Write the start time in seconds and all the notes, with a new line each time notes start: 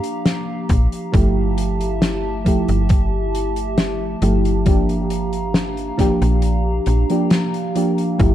Already playing: F3 A#3 D4 G4 F5 A#5
0.04 closed hi-hat
0.26 snare, closed hi-hat
0.69 A#1, kick, closed hi-hat
0.92 closed hi-hat
1.12 G1 F3 A3 E4 G4 E5 A5, kick, closed hi-hat
1.58 closed hi-hat
1.81 closed hi-hat
2.02 snare, closed hi-hat
2.45 F3 A3 E4 G4, kick, closed hi-hat
2.68 G1, closed hi-hat
2.89 kick, closed hi-hat
3.35 closed hi-hat
3.56 closed hi-hat
3.78 snare, closed hi-hat
4.22 G1 F3 A3 E4 G4, closed hi-hat
4.45 closed hi-hat
4.65 F3 A#3 D4 G4 F5 A#5, kick, closed hi-hat
4.89 closed hi-hat
5.10 closed hi-hat
5.33 closed hi-hat
5.54 snare, closed hi-hat
5.77 closed hi-hat
5.97 F3 A#3 D4 G4, kick, snare, closed hi-hat
6.22 A#1, closed hi-hat
6.42 closed hi-hat
6.86 A#1, closed hi-hat
7.10 F3 A#3 D4 G4, closed hi-hat
7.30 snare, closed hi-hat
7.54 closed hi-hat
7.75 F3 A#3 D4 G4, closed hi-hat
7.98 closed hi-hat
8.19 G1 F3 A3 E4 G4 E5 A5, kick, closed hi-hat